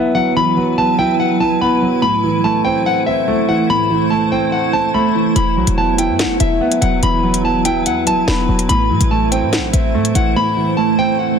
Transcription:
0.00 0.36 E3 medium
0.00 0.15 F#3 medium
0.00 1.99 F#3 medium
0.00 0.78 B3 loud
0.00 0.99 E4 medium
0.00 8.65 E4 medium
0.00 1.99 B4 medium
0.00 0.13 E5 medium
0.15 0.55 F#3 medium
0.15 0.33 F#5 medium
0.36 1.40 E3 medium
0.36 0.75 B5 loud
0.57 1.61 F#3 medium
0.78 1.60 B3 medium
0.78 0.96 A5 medium
0.99 1.39 E4 loud
0.99 1.17 G5 medium
1.20 1.38 F#5 medium
1.40 2.03 E4 medium
1.40 1.58 A5 medium
1.61 2.03 B3 medium
1.61 2.00 B5 medium
1.82 2.03 F#3 medium
2.02 3.07 A2 medium
2.02 5.33 A3 medium
2.02 5.33 C5 loud
2.02 2.42 B5 loud
2.24 3.28 E3 medium
2.44 3.26 A3 medium
2.44 2.62 A5 medium
2.65 3.05 C4 loud
2.65 2.83 G5 medium
2.86 3.04 F#5 medium
3.06 4.11 C4 medium
3.06 3.46 E5 medium
3.28 4.10 A3 loud
3.49 3.89 E3 medium
3.49 3.67 F#5 medium
3.70 4.74 A2 medium
3.70 4.09 B5 loud
3.90 4.94 E3 medium
4.10 4.93 A3 medium
4.10 4.29 A5 medium
4.32 4.72 C4 loud
4.32 4.50 G5 medium
4.52 4.70 F#5 medium
4.73 5.36 C4 medium
4.73 4.91 A5 medium
4.94 5.36 A3 loud
4.94 5.34 B5 medium
5.15 5.35 E3 medium
5.36 5.58 E1 loud
5.36 6.40 E3 medium
5.36 8.66 F#3 medium
5.36 8.66 B4 medium
5.36 5.75 B5 loud
5.36 closed hi-hat medium
5.57 5.67 B1 loud
5.57 6.61 F#3 medium
5.67 6.10 E1 loud
5.67 closed hi-hat loud
5.78 6.60 B3 medium
5.78 5.96 A5 medium
5.98 6.39 E4 medium
5.98 6.17 G5 medium
5.98 closed hi-hat medium
6.09 6.26 G2 loud
6.19 6.37 F#5 medium
6.19 snare loud
6.19 closed hi-hat medium
6.25 6.39 E1 loud
6.40 6.60 E1 loud
6.40 7.44 E4 medium
6.40 6.79 E5 medium
6.40 closed hi-hat medium
6.61 7.43 B3 loud
6.72 closed hi-hat medium
6.82 7.02 E1 loud
6.82 7.22 F#3 medium
6.82 7.00 F#5 medium
6.82 closed hi-hat medium
7.03 7.87 E1 loud
7.03 8.07 E3 medium
7.03 7.42 B5 loud
7.03 closed hi-hat medium
7.23 8.28 F#3 medium
7.34 closed hi-hat loud
7.44 8.26 B3 medium
7.44 7.63 A5 medium
7.65 8.05 E4 loud
7.65 7.83 G5 medium
7.65 closed hi-hat medium
7.86 8.08 E2 loud
7.86 8.04 F#5 medium
7.86 closed hi-hat medium
8.07 8.27 E1 loud
8.07 8.69 E4 medium
8.07 8.25 A5 medium
8.07 closed hi-hat medium
8.28 8.48 E1 loud
8.28 8.69 B3 medium
8.28 8.67 B5 medium
8.28 snare loud
8.48 8.69 E1 loud
8.48 8.69 F#3 medium
8.59 closed hi-hat medium
8.69 8.92 A1 loud
8.69 9.74 A2 medium
8.69 11.39 A3 medium
8.69 11.39 E4 medium
8.69 11.39 C5 medium
8.69 9.08 B5 loud
8.69 closed hi-hat medium
8.90 9.00 A2 loud
8.90 9.94 E3 medium
9.01 9.44 A1 loud
9.01 closed hi-hat medium
9.11 9.93 A3 medium
9.11 9.29 A5 medium
9.32 9.72 C4 loud
9.32 9.50 G5 medium
9.32 closed hi-hat medium
9.42 9.59 A2 loud
9.53 9.71 F#5 medium
9.53 snare loud
9.53 closed hi-hat medium
9.58 9.73 A1 loud
9.73 9.96 A1 loud
9.73 10.78 C4 medium
9.73 10.13 E5 medium
9.73 closed hi-hat medium
9.94 10.14 A2 medium
9.94 10.76 A3 loud
10.05 closed hi-hat medium
10.15 10.35 A1 loud
10.15 10.55 E3 medium
10.15 10.33 F#5 medium
10.15 closed hi-hat medium
10.36 11.39 A2 medium
10.36 10.75 B5 loud
10.57 11.39 E3 medium
10.77 11.39 A3 medium
10.77 10.95 A5 medium
10.98 11.39 C4 loud
10.98 11.17 G5 medium
11.19 11.37 F#5 medium

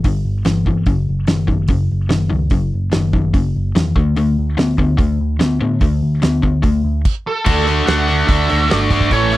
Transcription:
0.04 0.24 G1 medium
0.04 0.42 G2 medium
0.04 0.42 D3 medium
0.04 kick loud
0.04 open hi-hat soft
0.25 0.44 G1 medium
0.45 0.65 G1 medium
0.45 0.64 G2 medium
0.45 0.64 E3 medium
0.45 snare loud
0.45 open hi-hat soft
0.66 0.86 G1 medium
0.66 0.85 G2 medium
0.66 0.85 E3 medium
0.66 kick medium
0.86 1.06 F#1 medium
0.86 1.24 F#2 medium
0.86 1.24 C#3 medium
0.86 kick loud
0.86 open hi-hat soft
1.09 1.28 F#1 medium
1.27 1.48 F#1 medium
1.27 1.46 F#2 medium
1.27 1.46 D#3 medium
1.27 snare loud
1.27 open hi-hat soft
1.47 1.68 F#1 medium
1.47 1.67 F#2 medium
1.47 1.67 D#3 medium
1.47 kick medium
1.68 1.89 F#1 medium
1.68 2.06 F#2 medium
1.68 2.07 C#3 medium
1.68 kick loud
1.68 open hi-hat soft
1.91 2.10 F#1 medium
2.09 2.31 F#1 medium
2.09 2.28 F#2 medium
2.09 2.29 D#3 medium
2.09 snare loud
2.09 open hi-hat soft
2.30 2.51 C#2 medium
2.30 2.49 F#2 medium
2.30 2.49 D#3 medium
2.50 2.71 F#1 medium
2.50 2.88 F#2 medium
2.50 2.89 C#3 medium
2.50 kick medium
2.50 open hi-hat soft
2.74 2.93 F#1 medium
2.92 3.13 F#1 medium
2.92 3.11 F#2 medium
2.92 3.11 D#3 medium
2.92 snare loud
2.92 open hi-hat medium
3.13 3.33 F#1 medium
3.13 3.32 F#2 medium
3.13 3.32 D#3 medium
3.13 kick medium
3.34 3.54 F#1 medium
3.34 3.71 F#2 medium
3.34 3.71 C#3 medium
3.34 kick loud
3.34 open hi-hat soft
3.56 3.74 F#1 medium
3.75 3.94 E2 medium
3.75 3.94 F#2 medium
3.75 3.94 D#3 medium
3.75 snare loud
3.75 open hi-hat medium
3.96 4.16 D2 medium
3.96 4.15 D3 medium
3.96 4.15 A3 medium
3.96 kick loud
4.16 4.36 D2 medium
4.16 4.54 D3 medium
4.16 4.54 A3 medium
4.16 open hi-hat soft
4.38 4.57 D2 medium
4.57 4.77 D2 medium
4.57 4.76 D3 medium
4.57 4.76 B3 medium
4.57 snare loud
4.57 open hi-hat soft
4.78 4.98 D2 medium
4.78 4.96 D3 medium
4.78 4.97 B3 medium
4.78 kick medium
4.97 5.18 D2 medium
4.97 5.35 D3 medium
4.97 5.36 A3 medium
4.97 kick loud
4.97 open hi-hat soft
5.20 5.39 D2 medium
5.39 5.60 D2 medium
5.39 5.58 D3 medium
5.39 5.58 B3 medium
5.39 snare loud
5.39 open hi-hat soft
5.61 5.80 A2 medium
5.61 5.79 D3 medium
5.61 5.79 B3 medium
5.81 6.01 D2 loud
5.81 6.19 D3 medium
5.81 6.19 A3 medium
5.81 kick loud
5.81 open hi-hat soft
6.03 6.22 D2 medium
6.22 6.43 D2 medium
6.22 6.41 D3 medium
6.22 6.41 B3 medium
6.22 snare loud
6.22 open hi-hat medium
6.42 6.63 D2 medium
6.42 6.61 D3 medium
6.42 6.62 B3 medium
6.42 kick medium
6.62 6.83 D2 medium
6.62 7.00 D3 medium
6.62 7.01 A3 medium
6.62 kick loud
6.62 open hi-hat soft
6.84 7.03 D2 medium
7.05 kick loud
7.05 crash medium
7.27 7.65 A4 medium
7.45 7.81 D2 medium
7.45 7.66 D3 medium
7.45 7.67 A3 medium
7.45 7.67 D4 medium
7.45 7.67 F#4 loud
7.45 kick loud
7.45 crash loud
7.67 7.86 D3 medium
7.67 7.87 A3 medium
7.67 7.87 D4 medium
7.67 7.87 F#4 medium
7.67 open hi-hat medium
7.86 8.22 D2 medium
7.86 8.06 D3 medium
7.86 8.08 A3 medium
7.86 8.07 D4 medium
7.86 8.07 F#4 medium
7.86 8.25 F#5 medium
7.86 snare loud
7.86 open hi-hat medium
8.07 8.27 D3 medium
8.07 8.28 A3 medium
8.07 8.28 D4 loud
8.07 8.29 F#4 medium
8.07 open hi-hat soft
8.27 8.46 D2 medium
8.27 8.48 D3 medium
8.27 8.48 A3 medium
8.27 8.49 D4 medium
8.27 8.50 F#4 medium
8.27 8.70 E5 loud
8.27 kick loud
8.27 open hi-hat medium
8.49 8.68 D2 medium
8.49 8.70 D3 medium
8.49 8.70 A3 medium
8.49 8.71 D4 medium
8.49 8.71 F#4 loud
8.49 open hi-hat medium
8.70 9.11 G1 medium
8.70 8.90 D3 medium
8.70 8.90 A3 medium
8.70 8.90 D4 medium
8.70 8.91 F#4 medium
8.70 9.12 D5 medium
8.70 snare loud
8.70 open hi-hat medium
8.91 9.10 D3 medium
8.91 9.10 A3 medium
8.91 9.10 D4 medium
8.91 9.10 F#4 medium
8.91 kick medium
8.91 open hi-hat medium
9.01 kick medium
9.11 9.37 A1 loud
9.11 9.31 A2 medium
9.11 9.32 E3 medium
9.11 9.31 A3 medium
9.11 9.32 C#4 loud
9.11 9.33 A4 loud
9.11 9.37 C#5 medium
9.11 kick medium
9.11 open hi-hat medium
9.32 9.37 A2 medium
9.32 9.37 E3 medium
9.32 9.37 A3 medium
9.32 9.37 C#4 medium
9.32 9.37 A4 medium
9.32 open hi-hat medium

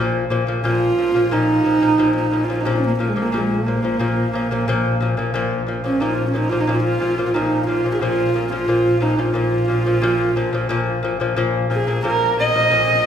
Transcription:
0.00 1.98 A#1 medium
0.00 0.23 A#2 loud
0.00 0.24 F3 loud
0.30 0.43 A#2 medium
0.30 0.44 F3 medium
0.47 0.60 A#2 medium
0.47 0.61 F3 medium
0.64 0.90 A#2 medium
0.64 0.91 F3 medium
0.64 1.34 F4 loud
0.97 1.11 A#2 medium
0.97 1.11 F3 medium
1.14 1.28 A#2 medium
1.14 1.28 F3 medium
1.31 1.58 A#2 medium
1.31 1.59 F3 medium
1.31 2.16 D#4 loud
1.64 1.78 A#2 medium
1.64 1.79 F3 medium
1.81 1.95 A#2 medium
1.81 1.95 F3 medium
1.98 7.34 A#1 medium
1.98 2.25 A#2 medium
1.98 2.26 F3 loud
2.17 2.46 D#4 medium
2.32 2.45 A#2 medium
2.32 2.46 F3 medium
2.44 2.62 F4 medium
2.48 2.62 A#2 medium
2.48 2.62 F3 medium
2.61 2.73 D#4 medium
2.65 2.92 A#2 medium
2.65 2.93 F3 loud
2.75 2.85 C#4 medium
2.87 2.96 A#3 medium
2.98 3.12 A#2 medium
2.98 3.13 F3 medium
2.98 3.11 A#3 medium
3.09 3.24 G#3 medium
3.16 3.29 A#2 medium
3.16 3.30 F3 medium
3.23 3.38 A#3 medium
3.32 3.59 A#2 medium
3.32 3.60 F3 medium
3.37 3.53 G#3 medium
3.51 5.33 A#3 medium
3.66 3.80 A#2 medium
3.66 3.80 F3 medium
3.83 3.96 A#2 medium
3.83 3.97 F3 medium
3.99 4.26 A#2 medium
3.99 4.27 F3 loud
4.34 4.47 A#2 medium
4.34 4.48 F3 medium
4.51 4.64 A#2 medium
4.51 4.64 F3 medium
4.68 4.94 A#2 loud
4.68 4.95 F3 loud
5.00 5.14 A#2 medium
5.00 5.15 F3 medium
5.17 5.31 A#2 medium
5.17 5.31 F3 medium
5.34 5.61 A#2 loud
5.34 5.61 F3 loud
5.67 5.80 A#2 medium
5.67 5.81 F3 medium
5.84 5.97 A#2 medium
5.84 5.98 F3 medium
5.84 6.02 C#4 medium
6.00 6.27 A#2 medium
6.00 6.28 F3 medium
6.00 6.15 D#4 medium
6.14 6.28 F4 medium
6.26 6.38 C#4 medium
6.34 6.47 A#2 medium
6.34 6.48 F3 medium
6.39 6.51 D#4 medium
6.50 6.65 A#2 medium
6.50 6.65 F3 medium
6.50 6.62 F4 medium
6.61 6.76 D#4 medium
6.67 6.94 A#2 medium
6.67 6.95 F3 medium
6.75 6.83 F4 medium
6.84 7.26 F4 medium
7.00 7.14 A#2 medium
7.00 7.15 F3 medium
7.18 7.32 A#2 medium
7.18 7.32 F3 medium
7.26 7.36 F4 medium
7.34 12.70 A#1 medium
7.34 7.61 A#2 medium
7.34 7.62 F3 medium
7.34 7.67 D#4 medium
7.67 7.81 A#2 medium
7.67 7.82 F3 medium
7.67 7.93 F4 medium
7.85 7.98 A#2 medium
7.85 7.99 F3 medium
7.94 8.02 G#4 medium
8.01 8.29 A#2 medium
8.01 8.29 F3 loud
8.01 8.52 F4 loud
8.34 8.48 A#2 medium
8.34 8.49 F3 medium
8.51 8.65 A#2 medium
8.51 8.66 F3 medium
8.51 9.04 F4 medium
8.68 8.95 A#2 medium
8.68 8.96 F3 medium
9.00 9.15 A#2 medium
9.00 9.16 F3 medium
9.00 9.21 D#4 medium
9.17 9.32 A#2 medium
9.17 9.32 F3 medium
9.17 11.00 F4 medium
9.34 9.62 A#2 medium
9.34 9.63 F3 medium
9.68 9.82 A#2 medium
9.68 9.83 F3 medium
9.85 9.99 A#2 medium
9.85 10.00 F3 medium
10.02 10.29 A#2 loud
10.02 10.30 F3 loud
10.36 10.50 A#2 medium
10.36 10.50 F3 medium
10.53 10.67 A#2 medium
10.53 10.67 F3 medium
10.69 10.97 A#2 loud
10.69 10.97 F3 loud
11.03 11.17 A#2 medium
11.03 11.18 F3 medium
11.20 11.34 A#2 medium
11.20 11.34 F3 medium
11.36 11.64 A#2 loud
11.36 11.64 F3 loud
11.70 11.84 A#2 medium
11.70 11.84 F3 medium
11.70 12.04 G#4 medium
11.87 12.01 A#2 medium
11.87 12.01 F3 medium
12.04 12.31 A#2 medium
12.04 12.31 F3 medium
12.04 12.37 A#4 loud
12.37 12.51 A#2 medium
12.37 12.52 F3 medium
12.37 13.06 D#5 loud
12.54 12.68 A#2 medium
12.54 12.69 F3 medium
12.70 13.06 A#1 medium
12.70 12.98 A#2 medium
12.70 12.98 F3 medium

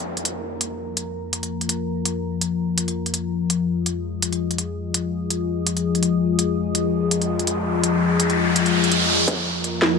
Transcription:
0.00 9.24 F3 medium
0.00 9.24 F4 medium
0.00 3.46 A#4 medium
0.00 3.48 A#5 medium
0.00 downlifter medium
0.17 closed hi-hat soft
0.25 closed hi-hat medium
0.61 closed hi-hat medium
0.97 closed hi-hat medium
1.33 closed hi-hat medium
1.43 closed hi-hat soft
1.61 closed hi-hat soft
1.69 closed hi-hat medium
2.05 closed hi-hat medium
2.41 closed hi-hat medium
2.78 closed hi-hat medium
2.88 closed hi-hat soft
3.06 closed hi-hat soft
3.14 closed hi-hat medium
3.50 9.24 G#4 medium
3.50 9.26 D#6 medium
3.50 closed hi-hat medium
3.86 closed hi-hat medium
4.22 closed hi-hat medium
4.33 closed hi-hat soft
4.51 closed hi-hat soft
4.58 closed hi-hat medium
4.94 closed hi-hat medium
5.30 closed hi-hat medium
5.67 closed hi-hat medium
5.77 closed hi-hat soft
5.95 closed hi-hat soft
6.03 closed hi-hat medium
6.39 closed hi-hat medium
6.39 riser medium
6.75 closed hi-hat medium
7.11 closed hi-hat medium
7.22 closed hi-hat soft
7.39 closed hi-hat soft
7.47 closed hi-hat medium
7.84 closed hi-hat medium
8.20 closed hi-hat medium
8.30 closed hi-hat soft
8.56 closed hi-hat medium
8.66 closed hi-hat soft
8.84 closed hi-hat soft
8.92 closed hi-hat medium
9.28 9.99 F3 medium
9.28 9.99 F4 medium
9.28 9.99 A#4 medium
9.28 9.99 A#5 medium
9.28 kick loud
9.28 closed hi-hat medium
9.28 riser medium
9.64 closed hi-hat medium
9.82 snare medium

